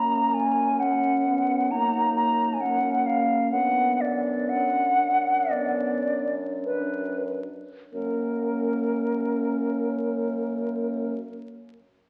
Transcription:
Already playing: F#2 A#3 C#4 A#5
0.34 G#5
0.80 C#4 F#5
1.26 B3
1.70 A#3 D#4 A#5
2.16 A#5
2.54 G#5
2.60 A#3 C#4 F#5
3.06 F5
3.51 F#2 B3 D4 F#5
4.01 D5
4.49 C#4 F#5
5.00 D4
5.51 B3 D5
6.06 C#4
6.65 D4 B4
7.92 F#2 A#3 C#4 A#4

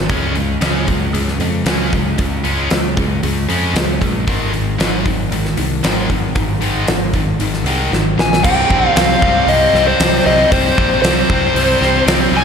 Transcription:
0.09 C#2 C#3 G#3 C#4, kick, open hi-hat
0.35 C#3 G#3, open hi-hat
0.61 C#2 C#3 G#3 C#4, snare, open hi-hat
0.88 C#3 G#3, kick, open hi-hat
1.13 C#2 C#3 G#3, open hi-hat
1.28 snare
1.39 F2 C#3 G#3, open hi-hat
1.65 C#2 C#3 G#3 C#4, snare, open hi-hat
1.93 C#2 C#3 G#3, kick, open hi-hat
2.18 C#2 C#3 G#3, kick, open hi-hat
2.44 C#3 G#3 C#4, open hi-hat
2.70 C#2 C#3 G#3, snare, open hi-hat
2.97 C#3 G#3, kick, open hi-hat
3.23 C#2 C#3 G#3, open hi-hat
3.48 F2 C#3 G#3 C#4, open hi-hat
3.73 C#2 C#3 G#3, snare, open hi-hat
4.01 A#1 C#3 G#3, kick, open hi-hat
4.27 G#1 G#2 D#3 G#3, kick, open hi-hat
4.52 G#2 D#3, open hi-hat
4.78 G#1 G#2 D#3 G#3, snare, open hi-hat
5.06 G#2 D#3, kick, open hi-hat
5.31 G#1 G#2 D#3, open hi-hat
5.45 snare
5.57 C2 G#2 D#3, open hi-hat
5.83 G#1 G#2 D#3 G#3, snare, open hi-hat
6.09 G#1 G#2 D#3, kick, open hi-hat
6.35 G#1 G#2 D#3, kick, open hi-hat
6.61 G#2 D#3 G#3, open hi-hat
6.88 G#1 G#2 D#3, snare, open hi-hat
7.13 G#2 D#3, kick, open hi-hat
7.39 G#1 G#2 D#3, open hi-hat
7.54 snare
7.64 C2 G#2 D#3 G#3, open hi-hat
7.91 G#1 G#2 D#3, snare
8.17 A#1 G#2 D#3 G#5, snare
8.33 snare
8.43 C2 C3 G3 C4 G5, kick, crash
8.70 A#1 C3 G3 C4, kick
8.86 F5
8.96 C2 C3 G3 C4 F5, snare, open hi-hat
9.22 C2 C3 G3 C4, kick
9.46 C2 C3 G3 C4 D#5, open hi-hat
9.73 C2 C3 G3 C4, snare
9.87 C5
10.00 C2 C3 G3 C4, snare, open hi-hat
10.25 C2 C3 G3 C4 D#5
10.51 C2 C3 G3 C4 C5, kick, open hi-hat
10.77 A#1 C3 G3 C4, kick
11.02 C2 C3 G3 C4 C5, snare, open hi-hat
11.29 C2 C3 G3 C4, kick
11.54 C2 C3 G3 C4, open hi-hat
11.81 C2 C3 G3 C4, snare
12.06 C2 C3 G3 C4, snare, open hi-hat
12.32 C2 C3 G3 C4
12.37 G#5

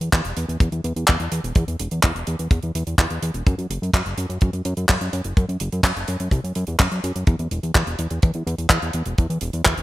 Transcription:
0.01 E2, closed hi-hat
0.13 E2, kick, clap, closed hi-hat
0.25 E1, closed hi-hat
0.37 E2, closed hi-hat
0.48 E2, closed hi-hat
0.60 E2, kick, closed hi-hat
0.72 E2, closed hi-hat
0.84 E2, closed hi-hat
0.96 E2, closed hi-hat
1.08 E2, kick, clap, closed hi-hat
1.20 E2, closed hi-hat
1.32 E2, closed hi-hat
1.44 E1, closed hi-hat
1.55 E2, kick, closed hi-hat
1.68 E2, closed hi-hat
1.79 E1, closed hi-hat
1.91 E2, closed hi-hat
2.03 E2, kick, clap, closed hi-hat
2.15 E1, closed hi-hat
2.27 E2, closed hi-hat
2.39 E2, closed hi-hat
2.51 E2, kick, closed hi-hat
2.62 E2, closed hi-hat
2.75 E2, closed hi-hat
2.87 E2, closed hi-hat
2.98 E2, kick, clap, closed hi-hat
3.10 E2, closed hi-hat
3.22 E2, closed hi-hat
3.34 E1, closed hi-hat
3.46 F#2, kick, closed hi-hat
3.58 F#2, closed hi-hat
3.70 F#1, closed hi-hat
3.82 F#2, closed hi-hat
3.93 F#2, kick, clap, closed hi-hat
4.06 F#1, closed hi-hat
4.18 F#2, closed hi-hat
4.30 F#2, closed hi-hat
4.41 F#2, kick, closed hi-hat
4.53 F#2, closed hi-hat
4.65 F#2, closed hi-hat
4.77 F#2, closed hi-hat
4.89 F#2, kick, clap, closed hi-hat
5.01 F#2, closed hi-hat
5.13 F#2, closed hi-hat
5.24 F#1, closed hi-hat
5.37 F#2, kick, closed hi-hat
5.49 F#2, closed hi-hat
5.60 F#1, closed hi-hat
5.72 F#2, closed hi-hat
5.83 F#2, kick, clap, closed hi-hat
5.96 F#1, closed hi-hat
6.08 F#2, closed hi-hat
6.20 F#2, closed hi-hat
6.31 C2, kick, closed hi-hat
6.44 F#2, closed hi-hat
6.55 F#2, closed hi-hat
6.67 E2, closed hi-hat
6.80 F#2, kick, clap, closed hi-hat
6.92 F#2, closed hi-hat
7.04 F#2, closed hi-hat
7.16 F#2, closed hi-hat
7.27 E2, kick, closed hi-hat
7.39 E2, closed hi-hat
7.51 E1, closed hi-hat
7.63 E2, closed hi-hat
7.75 E2, kick, clap, closed hi-hat
7.87 E1, closed hi-hat
7.99 E2, closed hi-hat
8.10 E2, closed hi-hat
8.22 E2, kick, closed hi-hat
8.34 E2, closed hi-hat
8.47 E2, closed hi-hat
8.58 E2, closed hi-hat
8.70 E2, kick, clap, closed hi-hat
8.82 E2, closed hi-hat
8.93 E2, closed hi-hat
9.06 E1, closed hi-hat
9.18 E2, kick, closed hi-hat
9.30 E2, closed hi-hat
9.41 E1, closed hi-hat
9.53 E2, closed hi-hat
9.65 E2, kick, clap, closed hi-hat
9.77 E1, closed hi-hat

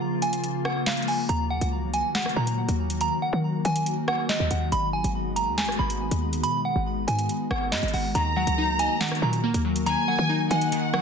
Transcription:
Already playing: C#3 F3 A#3 F4
0.22 G#5, closed hi-hat
0.33 closed hi-hat
0.44 closed hi-hat
0.65 F#5, cross-stick
0.86 F5, snare, clap, closed hi-hat
0.92 closed hi-hat
0.97 closed hi-hat
1.02 closed hi-hat
1.08 G#5, open hi-hat
1.29 D#2 D#3 F#3 F#4 A#5, closed hi-hat
1.50 F#5
1.61 C#2, closed hi-hat
1.94 G#5, closed hi-hat
2.15 F#5, snare, clap, closed hi-hat
2.22 cross-stick, closed hi-hat
2.29 closed hi-hat
2.36 A#2 A#5
2.47 closed hi-hat
2.69 D#2, closed hi-hat
2.90 closed hi-hat
3.01 A#5, closed hi-hat
3.22 F#5
3.33 D#3
3.65 D#3 G#5, closed hi-hat
3.76 closed hi-hat
3.86 closed hi-hat
4.08 F#5, cross-stick
4.29 D#5, snare, clap, closed hi-hat
4.40 D#2
4.51 D#2 F#5, closed hi-hat
4.72 G#1 G#3 B3 B5, closed hi-hat
4.93 G#5
5.04 G#1, closed hi-hat
5.36 A#5, closed hi-hat
5.47 D#2
5.58 G#5, snare, clap, closed hi-hat
5.63 G#1, closed hi-hat
5.69 cross-stick, closed hi-hat
5.79 G#1 B5
5.90 closed hi-hat
6.11 D#2, closed hi-hat
6.33 closed hi-hat
6.43 B2 B5, closed hi-hat
6.65 F#5
6.76 G#1
7.08 G#2 G#5, closed hi-hat
7.19 closed hi-hat
7.29 closed hi-hat
7.51 G#1 F#5, cross-stick
7.72 G#2 D#5, snare, clap, closed hi-hat
7.78 closed hi-hat
7.83 G#1, closed hi-hat
7.88 closed hi-hat
7.94 G#1 F#5, open hi-hat
8.15 D#2 D#3 A#3 F#4 A#4 A#5, closed hi-hat
8.36 F#3 F#5
8.47 C#2, closed hi-hat
8.58 D#4
8.79 D#5 G#5, closed hi-hat
9.01 D#3 F#5, snare, clap, closed hi-hat
9.08 cross-stick, closed hi-hat
9.15 closed hi-hat
9.22 A#2 F#3 A#5
9.33 closed hi-hat
9.43 A#3
9.54 D#2, closed hi-hat
9.65 F#3
9.76 closed hi-hat
9.86 D#3 G#5 A#5, closed hi-hat
10.08 F#3 F#5
10.19 D#3
10.29 D#4
10.51 D#3 D#5 F#5 G#5, closed hi-hat
10.61 closed hi-hat
10.72 D#3, closed hi-hat
10.94 F#3 F#5, cross-stick

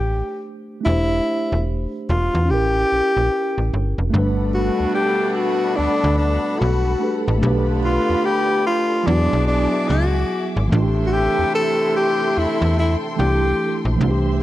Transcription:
Already playing: A1 A3 D4 G4 C5
0.81 A3 D4
0.85 E1 E4 G4 C5
1.52 E1
2.09 E1 F4
2.35 E2
2.45 C#4 E4
2.50 A1 G4 A#4
2.92 A#1
3.17 A#1
3.58 A1
3.74 G1
3.98 F1
4.10 G1 B2 A3 D4 A4 F#5 B5
4.16 G3 B4
4.54 F#4
4.80 D2
4.95 G4
5.32 F#4 G4
5.76 D2 D4
6.04 D2
6.18 D4
6.59 B1 F#4
6.99 A3 D4 G4
7.04 B4
7.28 A1
7.38 D3 A3 B3 D4 F4 B5
7.42 B1 G4 D5
7.47 B4
7.84 F4
8.10 E2
8.25 G4
8.66 F4
9.03 B2 F#3 G#3 B3 D4 G#4 E5 D6
9.07 E2 E4
9.12 F#4
9.18 G#4
9.33 B1
9.48 D4
9.89 C#2 F#4
10.56 G#1
10.68 C3 E3 A3 E4 A4 G5 C6
10.72 A1 D4 F4
10.82 G4
11.07 F#4
11.13 G4
11.39 E2
11.55 A4
11.97 G4
12.37 E2 E4
12.62 E2
12.79 E4
13.16 C2 E3 A3 D4 G4
13.20 E4
13.85 A#1
13.95 E3 A3 C4 E5
14.00 C2 E3 D4 G4 C5 C6
14.04 F4
14.11 G4

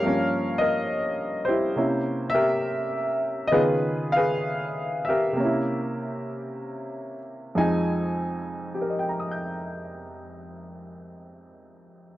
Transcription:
Already playing: G4 A#4 C#5 F5
0.02 G2 F3 A#3
0.07 C#4
0.58 A#4 D#5
1.45 G4 C5
1.49 E4
1.76 C3 A#3 C#4 E4
2.30 E5
2.35 G4 A#4
3.48 D#5
3.52 C#3 D#3 B3 F4 G#4 B4
4.12 F5
4.16 G#4 B4
5.05 G4 E5
5.10 A#4
5.33 C3 A#3
5.40 C#4
5.44 E4
7.55 F2 F3 G#3 D#4 G#5
8.74 G4
8.82 A#4
8.90 D#5
8.99 G5
9.09 A#5
9.20 D#6
9.31 G6

